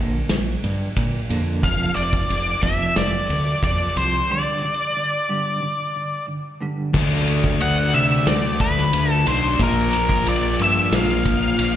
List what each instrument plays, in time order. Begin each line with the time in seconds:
Already playing: fingered electric bass A#1, clean electric guitar A#2 D3 A#3
0.29 fingered electric bass A#1, clean electric guitar A#2 D3, snare, ride
0.63 fingered electric bass G2, clean electric guitar A#2 D3, ride
0.97 fingered electric bass A#2, clean electric guitar A#2 D3, kick, ride
1.29 fingered electric bass F2, clean electric guitar A#2 D3 A#3, ride
1.63 fingered electric bass F1, clean electric guitar F2 C3 F3, lead electric guitar F5, kick, ride
1.95 fingered electric bass F1, lead electric guitar D5, ride
2.13 kick
2.29 fingered electric bass F1, clean electric guitar F2 C3, ride
2.62 fingered electric bass F1, clean electric guitar F2 C3 F3, lead electric guitar E5, kick, ride
2.96 fingered electric bass F1, clean electric guitar C3, lead electric guitar D5, snare, ride
3.29 fingered electric bass D2, clean electric guitar F2 C3, ride
3.63 fingered electric bass F2, clean electric guitar F2 C3, lead electric guitar D5, kick, ride
3.95 fingered electric bass C2, clean electric guitar F2 C3 F3, lead electric guitar C5, ride
4.29 clean electric guitar G2 D3 G3, lead electric guitar D5
4.64 clean electric guitar G2 D3
4.96 clean electric guitar G2 D3
5.29 clean electric guitar G2 D3 G3
5.62 clean electric guitar G2 D3
5.96 clean electric guitar G2 D3
6.27 clean electric guitar G2 D3
6.61 clean electric guitar G2 D3 G3
6.94 fingered electric bass D2, distorted electric guitar D3 A3 D4, clean electric guitar D3, kick, crash
7.27 clean electric guitar A3, ride
7.44 kick
7.61 fingered electric bass D2, clean electric guitar F#4, lead electric guitar F#5, ride
7.94 fingered electric bass C3, clean electric guitar D4, lead electric guitar E5, ride
8.26 fingered electric bass D2, clean electric guitar F#4, lead electric guitar D5, snare, ride
8.60 clean electric guitar A3, lead electric guitar B4, kick, ride
8.77 snare
8.93 fingered electric bass D2, clean electric guitar D4, ride
9.13 lead electric guitar A4
9.26 fingered electric bass B1, distorted electric guitar D3 A3 D4, clean electric guitar A3, lead electric guitar C5, ride
9.59 fingered electric bass A#1, distorted electric guitar A#2 F3 A#3, clean electric guitar A#2, kick, ride
9.63 lead electric guitar A#4
9.93 clean electric guitar A#3, ride
10.09 kick
10.26 fingered electric bass A#1, clean electric guitar F4, lead electric guitar D5, ride
10.59 fingered electric bass G2, clean electric guitar D4, lead electric guitar E5, ride
10.92 fingered electric bass A#1, clean electric guitar F4, snare, ride
10.96 lead electric guitar F5
11.26 clean electric guitar A#3, kick, ride
11.58 fingered electric bass A#1, clean electric guitar D4, ride